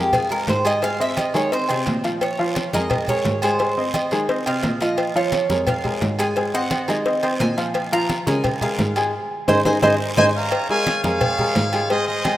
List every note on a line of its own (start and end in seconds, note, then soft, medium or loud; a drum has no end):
0.00 0.44 F2 medium
0.00 0.24 G#3 medium
0.00 0.13 G4 medium
0.00 0.24 G#4 medium
0.00 0.24 A#4 medium
0.13 0.31 G#4 medium
0.13 cowbell loud
0.13 high conga soft
0.13 low conga medium
0.13 low agogo loud
0.13 long guiro medium
0.30 0.59 G#3 medium
0.30 0.59 G#4 medium
0.30 0.59 A#4 medium
0.30 0.48 A#4 medium
0.30 high conga soft
0.30 low agogo medium
0.47 1.29 G#2 loud
0.47 0.65 C5 medium
0.47 cowbell medium
0.47 high conga medium
0.47 low timbale medium
0.47 short guiro medium
0.65 0.79 G#3 medium
0.65 0.79 G#4 medium
0.65 0.83 D#5 loud
0.65 0.80 G#5 medium
0.65 cowbell medium
0.65 high conga soft
0.65 low agogo loud
0.65 short guiro medium
0.82 0.97 G#3 medium
0.82 0.97 G#4 medium
0.82 1.00 F5 loud
0.82 0.97 G#5 medium
0.82 cowbell loud
0.82 high conga soft
0.82 low agogo medium
0.82 long guiro medium
1.00 1.28 C4 medium
1.00 1.28 C5 medium
1.00 1.29 D#5 medium
1.00 1.17 E5 loud
1.00 high conga soft
1.17 1.35 D#5 medium
1.17 cowbell medium
1.17 high conga loud
1.17 low timbale medium
1.17 low agogo loud
1.17 short guiro medium
1.34 1.67 D#3 loud
1.34 1.49 G#3 medium
1.34 1.49 G#4 medium
1.34 1.52 C#5 medium
1.34 1.49 G#5 medium
1.34 high conga soft
1.34 low agogo medium
1.34 short guiro medium
1.52 1.66 C4 medium
1.52 1.66 C5 medium
1.52 1.69 C5 medium
1.52 1.66 D#5 medium
1.52 cowbell loud
1.52 high conga soft
1.52 long guiro medium
1.69 1.85 C3 medium
1.69 1.98 C4 medium
1.69 1.80 G#4 medium
1.69 1.98 C5 medium
1.69 1.98 D#5 medium
1.69 cowbell medium
1.69 high conga soft
1.69 low agogo loud
1.86 2.67 A#2 loud
1.86 cowbell medium
1.86 high conga medium
1.86 low timbale medium
1.86 low agogo medium
1.86 short guiro medium
2.04 2.32 F3 medium
2.04 2.32 F4 medium
2.04 2.33 F5 medium
2.04 cowbell medium
2.04 high conga soft
2.04 short guiro medium
2.21 2.70 C#5 medium
2.21 cowbell loud
2.21 high conga soft
2.21 low agogo loud
2.21 long guiro medium
2.39 2.67 F3 loud
2.39 2.67 F4 medium
2.39 2.67 F5 loud
2.39 high conga soft
2.55 cowbell medium
2.55 high conga loud
2.55 low timbale medium
2.55 low agogo medium
2.55 short guiro medium
2.73 3.22 F2 medium
2.73 3.02 G#3 medium
2.73 3.02 G#4 medium
2.73 3.02 A#4 medium
2.73 3.06 D#5 loud
2.73 high conga medium
2.73 short guiro medium
2.90 cowbell loud
2.90 high conga soft
2.90 low conga medium
2.90 low agogo loud
2.90 long guiro medium
3.07 3.37 G#3 medium
3.07 3.37 G#4 medium
3.07 3.37 A#4 medium
3.07 3.41 C#5 loud
3.07 high conga soft
3.07 low conga medium
3.07 low agogo medium
3.25 4.06 G#2 loud
3.25 cowbell medium
3.25 high conga medium
3.25 low timbale medium
3.25 short guiro medium
3.42 3.57 G#3 medium
3.42 3.57 G#4 loud
3.42 3.91 C5 loud
3.42 3.57 G#5 medium
3.42 cowbell medium
3.42 high conga soft
3.42 low agogo loud
3.42 short guiro medium
3.59 3.74 G#3 medium
3.59 3.74 G#4 medium
3.59 3.74 G#5 medium
3.59 cowbell loud
3.59 high conga soft
3.59 low agogo medium
3.59 long guiro medium
3.77 4.06 C4 medium
3.77 4.06 C5 medium
3.77 4.06 D#5 medium
3.77 high conga soft
3.94 4.43 D#5 medium
3.94 cowbell medium
3.94 high conga loud
3.94 low timbale medium
3.94 low agogo loud
3.94 short guiro medium
4.11 4.44 D#3 loud
4.11 4.26 G#3 loud
4.11 4.26 G#4 medium
4.11 4.26 G#5 medium
4.11 high conga soft
4.11 low agogo medium
4.11 short guiro medium
4.29 4.43 C4 medium
4.29 4.43 C5 medium
4.29 4.44 D#5 medium
4.29 cowbell loud
4.29 high conga soft
4.29 long guiro medium
4.46 4.62 C3 medium
4.46 4.75 C4 medium
4.46 4.75 C5 medium
4.46 4.75 D#5 medium
4.46 4.79 F5 loud
4.46 cowbell medium
4.46 high conga soft
4.46 low agogo loud
4.63 5.44 A#2 loud
4.63 cowbell medium
4.63 high conga medium
4.63 low timbale medium
4.63 low agogo medium
4.63 short guiro medium
4.81 5.09 F3 medium
4.81 5.10 F4 medium
4.81 5.14 D#5 medium
4.81 5.10 F5 medium
4.81 cowbell medium
4.81 high conga soft
4.81 short guiro medium
4.98 cowbell loud
4.98 high conga soft
4.98 low agogo loud
4.98 long guiro medium
5.15 5.44 F3 loud
5.15 5.44 F4 loud
5.15 5.64 C#5 medium
5.15 5.44 F5 loud
5.15 high conga soft
5.32 cowbell medium
5.32 high conga loud
5.32 low timbale medium
5.32 low agogo medium
5.32 short guiro medium
5.50 5.98 F2 loud
5.50 5.78 G#3 medium
5.50 5.79 G#4 medium
5.50 5.79 A#4 medium
5.50 high conga medium
5.50 short guiro medium
5.67 6.16 F5 medium
5.67 cowbell loud
5.67 high conga soft
5.67 low conga medium
5.67 low agogo loud
5.67 long guiro medium
5.84 6.13 G#3 medium
5.84 6.13 G#4 medium
5.84 6.13 A#4 medium
5.84 high conga soft
5.84 low conga medium
5.84 low agogo medium
6.01 6.82 G#2 loud
6.01 cowbell medium
6.01 high conga medium
6.01 low timbale medium
6.01 short guiro medium
6.19 6.33 G#3 medium
6.19 6.33 G#4 medium
6.19 6.34 G#5 medium
6.19 6.52 G#5 loud
6.19 cowbell medium
6.19 high conga soft
6.19 low agogo loud
6.19 short guiro medium
6.36 6.51 G#3 medium
6.36 6.51 G#4 medium
6.36 6.51 G#5 medium
6.36 cowbell loud
6.36 high conga soft
6.36 low agogo medium
6.36 long guiro medium
6.54 6.82 C4 medium
6.54 6.83 C5 medium
6.54 6.83 D#5 medium
6.54 6.86 F#5 loud
6.54 high conga soft
6.71 cowbell medium
6.71 high conga loud
6.71 low timbale medium
6.71 low agogo loud
6.71 short guiro medium
6.88 7.37 D#3 loud
6.88 7.03 G#3 medium
6.88 7.03 G#4 medium
6.88 7.37 D#5 medium
6.88 7.03 G#5 medium
6.88 high conga soft
6.88 low agogo medium
6.88 short guiro medium
7.06 7.20 C4 medium
7.06 7.20 C5 medium
7.06 7.20 D#5 medium
7.06 cowbell loud
7.06 high conga soft
7.06 long guiro medium
7.23 7.51 C4 medium
7.23 7.52 C5 medium
7.23 7.52 D#5 medium
7.23 cowbell medium
7.23 high conga soft
7.23 low agogo loud
7.40 8.21 A#2 loud
7.40 7.89 G#5 medium
7.40 cowbell medium
7.40 high conga medium
7.40 low timbale medium
7.40 low agogo medium
7.40 short guiro medium
7.57 7.86 F3 medium
7.57 7.86 F4 medium
7.57 7.86 F5 medium
7.57 cowbell medium
7.57 high conga soft
7.57 short guiro medium
7.74 cowbell loud
7.74 high conga soft
7.74 low agogo loud
7.74 long guiro medium
7.92 8.21 F3 loud
7.92 8.21 F4 loud
7.92 8.21 F5 loud
7.92 8.25 A#5 loud
7.92 high conga soft
8.09 cowbell medium
8.09 high conga loud
8.09 low timbale medium
8.09 low agogo medium
8.09 short guiro medium
8.27 8.75 C#3 loud
8.27 8.55 G#3 medium
8.27 8.55 G#4 medium
8.27 8.56 A#4 medium
8.27 8.59 G#5 loud
8.27 high conga loud
8.27 short guiro medium
8.44 cowbell loud
8.44 high conga soft
8.44 low conga medium
8.44 low agogo loud
8.44 long guiro medium
8.61 8.90 G#3 medium
8.61 8.90 G#4 medium
8.61 8.90 A#4 medium
8.61 9.10 F5 medium
8.61 high conga soft
8.61 low conga medium
8.61 low agogo medium
8.78 9.11 G#2 loud
8.78 cowbell medium
8.78 high conga medium
8.78 low timbale medium
8.78 short guiro medium
8.96 9.10 G#3 medium
8.96 9.11 G#4 medium
8.96 9.11 G#5 medium
8.96 cowbell medium
8.96 high conga soft
8.96 low agogo loud
8.96 short guiro medium
9.48 9.61 G#2 loud
9.48 9.59 D#4 loud
9.48 9.59 G#4 medium
9.48 9.59 C5 medium
9.48 9.60 C5 loud
9.48 9.59 D#5 medium
9.48 9.59 G#5 loud
9.48 cowbell loud
9.48 high conga loud
9.48 high timbale loud
9.48 long guiro loud
9.65 9.78 G#2 medium
9.65 9.76 D#4 loud
9.65 9.77 G#4 loud
9.65 9.76 C5 medium
9.65 9.77 C5 medium
9.65 9.77 D#5 medium
9.65 9.77 G#5 medium
9.65 cowbell loud
9.65 high conga loud
9.65 high timbale medium
9.65 long guiro loud
9.82 9.95 G#2 loud
9.82 9.94 D#4 loud
9.82 9.94 G#4 loud
9.82 9.94 C5 loud
9.82 9.94 D#5 loud
9.82 9.94 G#5 medium
9.82 cowbell loud
9.82 high conga loud
9.82 high timbale loud
9.82 long guiro loud
10.17 10.30 G#2 loud
10.17 10.28 D#4 loud
10.17 10.28 G#4 loud
10.17 10.28 C5 medium
10.17 10.29 C5 loud
10.17 10.29 D#5 loud
10.17 10.26 G#5 loud
10.17 10.29 G#5 medium
10.17 cowbell loud
10.17 high conga loud
10.17 high timbale loud
10.17 long guiro loud
10.36 10.70 C#5 medium
10.36 10.69 F5 medium
10.36 10.67 A#5 loud
10.51 cowbell loud
10.51 high conga soft
10.51 low agogo loud
10.51 long guiro medium
10.69 10.98 G#3 medium
10.69 10.98 G#4 medium
10.69 10.98 A#4 medium
10.69 11.04 C#5 medium
10.69 11.03 F5 medium
10.69 11.02 G#5 loud
10.69 high conga soft
10.87 cowbell medium
10.87 high conga loud
10.87 low timbale medium
10.87 low agogo medium
10.87 short guiro medium
11.04 11.52 F2 loud
11.04 11.33 G#3 medium
11.04 11.33 G#4 medium
11.04 11.87 G#4 medium
11.04 11.33 A#4 medium
11.04 11.87 C#5 medium
11.04 11.87 F5 loud
11.04 high conga loud
11.04 short guiro medium
11.21 cowbell loud
11.21 high conga soft
11.21 low conga medium
11.21 low agogo loud
11.21 long guiro medium
11.38 11.67 G#3 medium
11.38 11.67 G#4 medium
11.38 11.68 A#4 medium
11.38 high conga soft
11.38 low conga medium
11.38 low agogo medium
11.55 12.36 G#2 loud
11.55 cowbell medium
11.55 high conga medium
11.55 low timbale medium
11.55 short guiro medium
11.73 11.88 G#3 medium
11.73 11.88 G#4 medium
11.73 11.88 G#5 medium
11.73 cowbell medium
11.73 high conga soft
11.73 low agogo loud
11.73 short guiro medium
11.90 12.19 G#3 medium
11.90 12.19 G#4 medium
11.90 12.08 G#4 medium
11.90 12.08 C5 medium
11.90 12.07 D#5 loud
11.90 12.19 G#5 medium
11.90 cowbell loud
11.90 high conga soft
11.90 low agogo medium
11.90 long guiro medium
12.08 12.37 G#4 medium
12.08 12.37 C5 medium
12.08 12.37 D#5 loud
12.08 high conga soft
12.25 12.37 G#3 medium
12.25 12.37 G#4 medium
12.25 12.37 G#5 medium
12.25 cowbell medium
12.25 high conga loud
12.25 low timbale medium
12.25 low agogo loud
12.25 short guiro medium